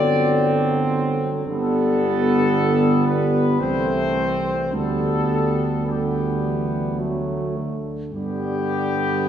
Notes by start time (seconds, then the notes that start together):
Already playing: G1 D3 F#3 C4 D5
1.46 G1 D3 G3 B3 A4
3.05 B4
3.59 C2 E3 A3 C4 C5
4.72 D2 D3 G3 B3 A4
5.86 D3 G3 B3 G4
6.45 E3
6.99 F#3 A3
7.56 D3
8.13 G2 D3 G3 B3 G4